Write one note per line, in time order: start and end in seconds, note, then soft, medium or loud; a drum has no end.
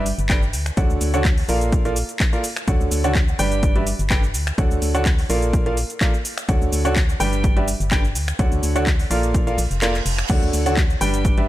0.00 0.13 G1 medium
0.06 open hi-hat loud
0.06 shaker medium
0.18 0.55 G1 medium
0.18 closed hi-hat soft
0.18 shaker soft
0.29 0.40 D3 medium
0.29 0.40 D4 medium
0.29 0.40 G4 medium
0.29 0.40 B4 medium
0.29 0.40 D5 medium
0.29 0.40 G5 loud
0.29 kick loud
0.29 clap loud
0.29 closed hi-hat medium
0.29 shaker soft
0.42 shaker soft
0.53 0.71 D2 medium
0.53 open hi-hat loud
0.53 shaker medium
0.66 finger snap medium
0.66 closed hi-hat soft
0.66 shaker soft
0.77 0.86 D2 medium
0.77 1.11 D3 medium
0.77 1.11 F#4 medium
0.77 1.11 A4 medium
0.77 1.11 C#5 medium
0.77 1.11 D5 medium
0.77 1.11 F#5 medium
0.77 kick loud
0.77 closed hi-hat medium
0.77 shaker soft
0.90 0.98 D2 medium
0.90 shaker soft
1.01 1.44 D2 medium
1.01 open hi-hat loud
1.01 shaker medium
1.14 1.23 D3 medium
1.14 1.23 F#4 medium
1.14 1.23 A4 medium
1.14 1.23 C#5 medium
1.14 1.23 D5 medium
1.14 1.23 F#5 loud
1.14 closed hi-hat soft
1.14 shaker soft
1.25 kick loud
1.25 clap loud
1.25 closed hi-hat medium
1.25 shaker soft
1.38 open hi-hat medium
1.38 shaker soft
1.49 2.03 A#1 medium
1.49 1.82 A#3 medium
1.49 1.82 F4 medium
1.49 1.82 A4 medium
1.49 1.82 A#4 medium
1.49 1.82 D5 medium
1.49 1.82 F5 medium
1.49 open hi-hat loud
1.49 shaker medium
1.61 closed hi-hat soft
1.61 shaker soft
1.72 kick loud
1.72 closed hi-hat medium
1.72 shaker soft
1.85 1.94 A#3 medium
1.85 1.94 F4 medium
1.85 1.94 A4 medium
1.85 1.94 A#4 medium
1.85 1.94 D5 medium
1.85 1.94 F5 medium
1.85 closed hi-hat soft
1.85 shaker soft
1.96 open hi-hat loud
1.96 shaker medium
2.09 closed hi-hat soft
2.09 shaker soft
2.20 kick loud
2.20 clap loud
2.20 closed hi-hat medium
2.20 shaker soft
2.33 2.42 A#3 medium
2.33 2.42 F4 medium
2.33 2.42 A4 medium
2.33 2.42 A#4 medium
2.33 2.42 D5 medium
2.33 2.42 F5 medium
2.33 shaker soft
2.44 open hi-hat loud
2.44 shaker medium
2.56 finger snap medium
2.56 closed hi-hat soft
2.56 shaker soft
2.68 2.77 D2 loud
2.68 3.01 D3 medium
2.68 3.01 F#4 medium
2.68 3.01 A4 medium
2.68 3.01 C#5 medium
2.68 3.01 D5 medium
2.68 3.01 F#5 medium
2.68 kick loud
2.68 closed hi-hat medium
2.68 shaker soft
2.80 2.88 D2 medium
2.80 shaker soft
2.91 3.34 D2 medium
2.91 open hi-hat loud
2.91 shaker medium
3.04 3.13 D3 medium
3.04 3.13 F#4 medium
3.04 3.13 A4 medium
3.04 3.13 C#5 medium
3.04 3.13 D5 medium
3.04 3.13 F#5 medium
3.04 closed hi-hat soft
3.04 shaker soft
3.15 kick loud
3.15 clap loud
3.15 closed hi-hat medium
3.15 shaker soft
3.28 shaker soft
3.39 3.94 G1 medium
3.39 3.73 G3 medium
3.39 3.73 D4 medium
3.39 3.73 G4 medium
3.39 3.73 B4 medium
3.39 3.73 D5 medium
3.39 3.73 G5 medium
3.39 open hi-hat loud
3.39 shaker medium
3.52 closed hi-hat soft
3.52 shaker soft
3.63 kick loud
3.63 closed hi-hat medium
3.63 shaker soft
3.76 3.85 G3 medium
3.76 3.85 D4 medium
3.76 3.84 G4 medium
3.76 3.85 B4 medium
3.76 3.85 D5 medium
3.76 3.84 E5 medium
3.76 closed hi-hat soft
3.87 open hi-hat loud
3.87 shaker medium
3.99 4.36 G1 medium
3.99 closed hi-hat soft
3.99 shaker soft
4.10 4.21 D3 medium
4.10 4.21 D4 medium
4.10 4.21 G4 medium
4.10 4.21 B4 medium
4.10 4.21 D5 medium
4.10 4.21 G5 loud
4.10 kick loud
4.10 clap loud
4.10 closed hi-hat medium
4.10 shaker soft
4.23 shaker soft
4.34 4.52 D2 medium
4.34 open hi-hat loud
4.34 shaker medium
4.47 finger snap medium
4.47 closed hi-hat soft
4.47 shaker soft
4.58 4.67 D2 medium
4.58 4.92 D3 medium
4.58 4.92 F#4 medium
4.58 4.92 A4 medium
4.58 4.92 C#5 medium
4.58 4.92 D5 medium
4.58 4.92 F#5 medium
4.58 kick loud
4.58 closed hi-hat medium
4.58 shaker soft
4.71 4.79 D2 medium
4.71 shaker soft
4.82 5.25 D2 medium
4.82 open hi-hat loud
4.82 shaker medium
4.95 5.04 D3 medium
4.95 5.04 F#4 medium
4.95 5.04 A4 medium
4.95 5.04 C#5 medium
4.95 5.04 D5 medium
4.95 5.04 F#5 loud
4.95 closed hi-hat medium
4.95 shaker soft
5.05 kick loud
5.05 clap loud
5.05 closed hi-hat medium
5.05 shaker soft
5.18 open hi-hat medium
5.18 shaker soft
5.30 5.84 A#1 medium
5.30 5.63 A#3 medium
5.30 5.63 F4 medium
5.30 5.63 A4 medium
5.30 5.63 A#4 medium
5.30 5.63 D5 medium
5.30 5.63 F5 medium
5.30 open hi-hat loud
5.30 shaker medium
5.42 closed hi-hat soft
5.42 shaker soft
5.53 kick loud
5.53 closed hi-hat medium
5.53 shaker soft
5.66 5.75 A#3 medium
5.66 5.75 F4 medium
5.66 5.75 A4 medium
5.66 5.75 A#4 medium
5.66 5.75 D5 medium
5.66 5.75 F5 loud
5.66 closed hi-hat soft
5.77 open hi-hat loud
5.77 shaker medium
5.90 closed hi-hat medium
5.90 shaker soft
6.01 6.11 A#3 medium
6.01 6.11 F4 medium
6.01 6.11 A4 medium
6.01 6.11 A#4 medium
6.01 6.11 D5 medium
6.01 6.11 F5 loud
6.01 kick loud
6.01 clap loud
6.01 closed hi-hat medium
6.01 shaker soft
6.14 shaker soft
6.25 open hi-hat loud
6.25 shaker medium
6.38 finger snap medium
6.38 closed hi-hat soft
6.38 shaker soft
6.49 6.58 D2 loud
6.49 6.82 D3 medium
6.49 6.82 F#4 medium
6.49 6.82 A4 medium
6.49 6.82 C#5 medium
6.49 6.82 D5 medium
6.49 6.82 F#5 medium
6.49 kick loud
6.49 closed hi-hat medium
6.49 shaker soft
6.61 6.69 D2 medium
6.61 shaker soft
6.72 7.15 D2 medium
6.72 open hi-hat loud
6.72 shaker medium
6.85 6.94 D3 medium
6.85 6.94 F#4 medium
6.85 6.94 A4 medium
6.85 6.94 C#5 medium
6.85 6.94 D5 medium
6.85 6.94 F#5 loud
6.85 closed hi-hat medium
6.85 shaker soft
6.96 kick loud
6.96 clap loud
6.96 closed hi-hat medium
6.96 shaker soft
7.09 shaker soft
7.20 7.75 G1 medium
7.20 7.53 G3 medium
7.20 7.53 D4 medium
7.20 7.54 G4 medium
7.20 7.53 B4 medium
7.20 7.53 D5 medium
7.20 7.54 G5 medium
7.20 open hi-hat loud
7.20 shaker medium
7.33 closed hi-hat medium
7.33 shaker soft
7.44 kick loud
7.44 closed hi-hat medium
7.44 shaker soft
7.56 7.65 G3 medium
7.56 7.65 D4 medium
7.56 7.65 G4 medium
7.56 7.65 B4 medium
7.56 7.65 D5 medium
7.56 7.65 E5 loud
7.56 closed hi-hat soft
7.68 open hi-hat loud
7.68 shaker medium
7.80 8.17 G1 medium
7.80 closed hi-hat medium
7.80 shaker soft
7.91 8.02 D3 medium
7.91 8.02 D4 medium
7.91 8.02 G4 medium
7.91 8.02 B4 medium
7.91 8.02 D5 medium
7.91 8.02 G5 loud
7.91 kick loud
7.91 clap loud
7.91 closed hi-hat medium
7.91 shaker soft
8.04 shaker soft
8.15 8.33 D2 medium
8.15 open hi-hat loud
8.15 shaker medium
8.28 finger snap medium
8.28 closed hi-hat medium
8.28 shaker soft
8.39 8.48 D2 loud
8.39 8.73 D3 medium
8.39 8.73 F#4 medium
8.39 8.73 A4 medium
8.39 8.73 C#5 medium
8.39 8.73 D5 medium
8.39 8.73 F#5 medium
8.39 kick loud
8.39 closed hi-hat medium
8.39 shaker soft
8.52 8.60 D2 medium
8.52 closed hi-hat soft
8.52 shaker soft
8.63 9.06 D2 medium
8.63 open hi-hat loud
8.63 shaker medium
8.76 8.85 D3 medium
8.76 8.85 F#4 medium
8.76 8.85 A4 medium
8.76 8.85 C#5 medium
8.76 8.85 D5 medium
8.76 8.85 F#5 loud
8.76 closed hi-hat medium
8.76 shaker soft
8.87 kick loud
8.87 clap loud
8.87 closed hi-hat medium
8.87 shaker soft
8.99 open hi-hat medium
8.99 shaker soft
9.11 9.57 A#1 medium
9.11 9.44 A#3 medium
9.11 9.44 F4 medium
9.11 9.44 A4 medium
9.11 9.44 A#4 medium
9.11 9.44 D5 medium
9.11 9.44 F5 medium
9.11 open hi-hat loud
9.11 shaker medium
9.23 closed hi-hat medium
9.23 shaker soft
9.34 kick loud
9.34 closed hi-hat medium
9.34 reverse cymbal medium
9.34 shaker soft
9.47 9.56 A#3 medium
9.47 9.56 F4 medium
9.47 9.56 A4 medium
9.47 9.56 A#4 medium
9.47 9.56 D5 medium
9.47 9.56 F5 medium
9.47 closed hi-hat soft
9.47 shaker soft
9.58 9.67 A#1 medium
9.58 open hi-hat medium
9.58 shaker medium
9.71 10.01 F1 medium
9.71 closed hi-hat medium
9.71 shaker soft
9.82 9.92 A#3 medium
9.82 9.92 F4 medium
9.82 9.92 A4 medium
9.82 9.92 A#4 medium
9.82 9.92 D5 medium
9.82 9.92 F5 loud
9.82 clap loud
9.82 closed hi-hat medium
9.82 shaker soft
9.94 clap soft
9.94 shaker soft
10.06 10.24 F1 medium
10.06 open hi-hat loud
10.06 shaker medium
10.18 finger snap medium
10.18 closed hi-hat medium
10.18 shaker soft
10.29 10.39 D2 loud
10.29 10.63 D3 medium
10.29 10.63 F#4 medium
10.29 10.63 A4 medium
10.29 10.63 C#5 medium
10.29 10.63 D5 medium
10.29 10.63 F#5 medium
10.29 kick loud
10.29 closed hi-hat medium
10.29 crash medium
10.29 shaker soft
10.42 10.50 D2 medium
10.42 shaker soft
10.53 10.96 D2 medium
10.53 open hi-hat loud
10.53 shaker medium
10.66 10.75 D3 medium
10.66 10.75 F#4 medium
10.66 10.75 A4 medium
10.66 10.75 C#5 medium
10.66 10.75 D5 medium
10.66 10.75 F#5 loud
10.66 closed hi-hat medium
10.66 shaker soft
10.77 kick loud
10.77 clap loud
10.77 closed hi-hat medium
10.77 shaker soft
10.90 shaker soft
11.01 11.48 G1 medium
11.01 11.34 G3 medium
11.01 11.34 D4 medium
11.01 11.34 G4 medium
11.01 11.34 B4 medium
11.01 11.34 D5 medium
11.01 11.34 G5 medium
11.01 open hi-hat loud
11.01 shaker medium
11.14 closed hi-hat medium
11.14 shaker soft
11.25 kick loud
11.25 closed hi-hat medium
11.25 shaker soft
11.37 11.46 G3 medium
11.37 11.46 D4 medium
11.37 11.46 G4 medium
11.37 11.46 B4 medium
11.37 11.46 D5 medium
11.37 11.46 E5 medium
11.37 closed hi-hat soft